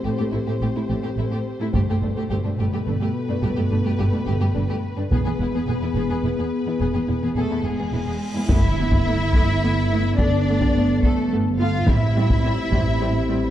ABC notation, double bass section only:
X:1
M:6/8
L:1/16
Q:3/8=71
K:Gmix
V:1 name="Double bass section" clef=bass
A,,, z A,,, z A,,, z A,,, z A,,, z3 | G,,, z G,,, z G,,, z G,,, z G,,, z3 | G,,, z G,,, z G,,, z G,,, z G,,, z3 | E,,, z E,,, z E,,, z E,,, z E,,, z3 |
E,,, z E,,, z E,,, z E,,, z E,,, z3 | G,,,6 G,,,6 | G,,,6 G,,,6 | A,,,6 A,,,6 |]